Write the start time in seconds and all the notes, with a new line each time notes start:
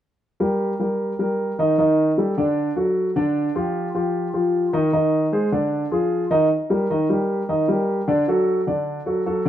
0.40 G3 G4 A#4
0.79 G3 G4 A#4
1.19 G3 G4 A#4
1.59 D#3 D#4 D#5
1.78 D#3 D#4 D#5
2.18 G3 G4 A4
2.37 D3 D4 D5
2.76 F#3 F#4 A4
3.16 D3 D4 D5
3.55 F3 F4 G4
3.94 F3 F4 G4
4.34 F3 F4 G4
4.73 D#3 D#4 D#5
4.93 D#3 D#4 D#5
5.32 G#3 G#4 C5
5.52 D3 D4 D5
5.91 F3 F4 G#4
6.30 D#3 D#4 D#5
6.70 G3 G4 A#4
6.90 D#3 D#4 D#5
7.09 G3 G4 A#4
7.49 D#3 D#4 D#5
7.68 G3 G4 A#4
8.08 D3 D4 D5
8.28 F#3 F#4 A4
8.67 D3 D4 D5
9.06 F#3 F#4 A4
9.26 F#3 F#4 A4
9.45 D3 D4